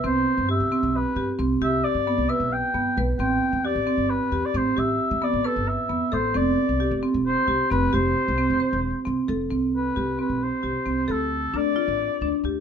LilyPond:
<<
  \new Staff \with { instrumentName = "Oboe" } { \time 7/8 \key c \major \tempo 4 = 133 c''4 e''4 b'4 r8 | e''8 d''4 e''8 g''4 r8 | g''4 d''4 b'8. d''16 c''8 | e''4 d''8 a'8 e''4 c''8 |
d''4. r8 c''4 b'8 | c''2~ c''8 r4 | r8 b'4 b'8 c''4. | a'4 d''2 r8 | }
  \new Staff \with { instrumentName = "Marimba" } { \time 7/8 \key c \major c'4 g'8 c'4 g'8 c'8 | g'4 b8 b'4 b8 b'8 | c'4 g'8 c'4 g'8 c'8 | g'4 b8 b'4 b8 a'8 |
c'4 g'8 c'4 g'8 c'8 | g'4 c'8 c''4 c'8 a'8 | c'4 g'8 c'4 g'8 c'8 | a'4 d'8 f'4 d'8 g'8 | }
  \new Staff \with { instrumentName = "Upright bass" } { \clef bass \time 7/8 \key c \major c,8 r16 g,8 c,16 r16 b,,8 r16 g,16 r16 c,8 | c,8 r16 g,8 c,16 r16 b,,8 r16 g,16 r16 b,,8 | a,,8 r16 e,8 a,,16 r16 g,,8 r16 e,16 r16 a,,8 | a,,8 r16 e,8 a,,16 r16 g,,8 r16 e,16 r16 a,,8 |
f,,8 r16 c,8 f,,16 r16 e,,8 r16 c,16 r16 f,,8 | f,,8 r16 c,8 f,,16 r16 e,,8 r16 c,16 r16 f,,8 | c,4 c,8 r16 b,,8 r16 c,16 r16 c,8 | d,4 d,8 r16 a,,8 r16 d,16 r16 d,8 | }
>>